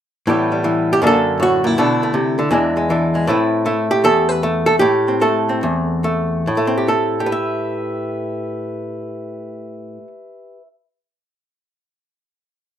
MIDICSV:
0, 0, Header, 1, 2, 480
1, 0, Start_track
1, 0, Key_signature, 0, "minor"
1, 0, Tempo, 376884
1, 338, Time_signature, 4, 2, 24, 8
1, 5138, Tempo, 395517
1, 7058, Tempo, 438276
1, 14905, End_track
2, 0, Start_track
2, 0, Title_t, "Hollow-body jazz guitar"
2, 0, Program_c, 0, 26
2, 345, Note_on_c, 0, 45, 72
2, 353, Note_on_c, 0, 52, 45
2, 365, Note_on_c, 0, 55, 47
2, 374, Note_on_c, 0, 59, 40
2, 379, Note_on_c, 0, 67, 49
2, 645, Note_off_c, 0, 55, 0
2, 661, Note_on_c, 0, 55, 42
2, 803, Note_off_c, 0, 52, 0
2, 819, Note_on_c, 0, 52, 57
2, 1147, Note_off_c, 0, 67, 0
2, 1181, Note_on_c, 0, 67, 91
2, 1267, Note_off_c, 0, 67, 0
2, 1277, Note_off_c, 0, 52, 0
2, 1294, Note_on_c, 0, 42, 70
2, 1300, Note_off_c, 0, 45, 0
2, 1304, Note_off_c, 0, 55, 0
2, 1309, Note_on_c, 0, 50, 53
2, 1311, Note_on_c, 0, 58, 49
2, 1313, Note_off_c, 0, 59, 0
2, 1319, Note_on_c, 0, 62, 49
2, 1359, Note_on_c, 0, 69, 104
2, 1778, Note_on_c, 0, 45, 55
2, 1807, Note_off_c, 0, 69, 0
2, 1816, Note_on_c, 0, 66, 89
2, 2085, Note_off_c, 0, 45, 0
2, 2090, Note_on_c, 0, 46, 61
2, 2121, Note_off_c, 0, 66, 0
2, 2121, Note_on_c, 0, 64, 78
2, 2234, Note_off_c, 0, 42, 0
2, 2241, Note_off_c, 0, 58, 0
2, 2247, Note_off_c, 0, 62, 0
2, 2255, Note_off_c, 0, 50, 0
2, 2258, Note_off_c, 0, 46, 0
2, 2267, Note_on_c, 0, 47, 72
2, 2275, Note_on_c, 0, 50, 44
2, 2278, Note_on_c, 0, 57, 47
2, 2291, Note_on_c, 0, 62, 49
2, 2571, Note_off_c, 0, 57, 0
2, 2586, Note_on_c, 0, 57, 47
2, 2718, Note_off_c, 0, 47, 0
2, 2723, Note_on_c, 0, 48, 61
2, 3024, Note_off_c, 0, 50, 0
2, 3038, Note_off_c, 0, 48, 0
2, 3040, Note_on_c, 0, 50, 60
2, 3192, Note_on_c, 0, 40, 75
2, 3198, Note_off_c, 0, 50, 0
2, 3203, Note_on_c, 0, 52, 54
2, 3205, Note_off_c, 0, 57, 0
2, 3208, Note_off_c, 0, 62, 0
2, 3210, Note_on_c, 0, 56, 53
2, 3223, Note_on_c, 0, 62, 53
2, 3510, Note_off_c, 0, 56, 0
2, 3526, Note_on_c, 0, 56, 47
2, 3689, Note_off_c, 0, 52, 0
2, 3692, Note_off_c, 0, 62, 0
2, 3694, Note_on_c, 0, 52, 58
2, 3707, Note_on_c, 0, 62, 49
2, 3996, Note_off_c, 0, 56, 0
2, 4011, Note_on_c, 0, 56, 47
2, 4157, Note_off_c, 0, 56, 0
2, 4159, Note_off_c, 0, 62, 0
2, 4162, Note_off_c, 0, 40, 0
2, 4170, Note_on_c, 0, 45, 73
2, 4172, Note_off_c, 0, 52, 0
2, 4177, Note_on_c, 0, 57, 48
2, 4180, Note_off_c, 0, 64, 0
2, 4188, Note_on_c, 0, 60, 46
2, 4196, Note_on_c, 0, 64, 48
2, 4207, Note_on_c, 0, 71, 49
2, 4652, Note_off_c, 0, 57, 0
2, 4657, Note_on_c, 0, 57, 65
2, 4660, Note_off_c, 0, 64, 0
2, 4666, Note_on_c, 0, 64, 45
2, 4973, Note_off_c, 0, 64, 0
2, 4978, Note_on_c, 0, 67, 89
2, 5135, Note_off_c, 0, 45, 0
2, 5142, Note_on_c, 0, 40, 65
2, 5146, Note_off_c, 0, 71, 0
2, 5151, Note_on_c, 0, 69, 103
2, 5445, Note_off_c, 0, 69, 0
2, 5445, Note_on_c, 0, 71, 100
2, 5610, Note_off_c, 0, 67, 0
2, 5615, Note_off_c, 0, 57, 0
2, 5620, Note_on_c, 0, 57, 64
2, 5896, Note_off_c, 0, 71, 0
2, 5901, Note_on_c, 0, 69, 88
2, 6005, Note_off_c, 0, 69, 0
2, 6059, Note_on_c, 0, 67, 88
2, 6080, Note_off_c, 0, 40, 0
2, 6083, Note_on_c, 0, 45, 72
2, 6096, Note_off_c, 0, 57, 0
2, 6404, Note_off_c, 0, 60, 0
2, 6409, Note_on_c, 0, 60, 45
2, 6569, Note_on_c, 0, 57, 56
2, 6573, Note_on_c, 0, 69, 73
2, 6890, Note_off_c, 0, 60, 0
2, 6908, Note_on_c, 0, 60, 46
2, 7048, Note_off_c, 0, 67, 0
2, 7059, Note_off_c, 0, 45, 0
2, 7072, Note_on_c, 0, 40, 66
2, 7511, Note_off_c, 0, 57, 0
2, 7524, Note_on_c, 0, 57, 60
2, 7973, Note_off_c, 0, 57, 0
2, 7983, Note_off_c, 0, 60, 0
2, 7994, Note_off_c, 0, 69, 0
2, 7997, Note_on_c, 0, 45, 59
2, 7998, Note_off_c, 0, 40, 0
2, 8104, Note_on_c, 0, 57, 59
2, 8216, Note_on_c, 0, 60, 56
2, 8328, Note_on_c, 0, 67, 56
2, 8446, Note_on_c, 0, 69, 78
2, 8791, Note_off_c, 0, 60, 0
2, 8795, Note_off_c, 0, 67, 0
2, 8795, Note_on_c, 0, 67, 63
2, 8862, Note_on_c, 0, 71, 65
2, 8913, Note_off_c, 0, 69, 0
2, 8927, Note_on_c, 0, 76, 63
2, 11830, Note_off_c, 0, 45, 0
2, 11938, Note_off_c, 0, 57, 0
2, 12466, Note_off_c, 0, 67, 0
2, 12533, Note_off_c, 0, 71, 0
2, 12597, Note_off_c, 0, 76, 0
2, 14905, End_track
0, 0, End_of_file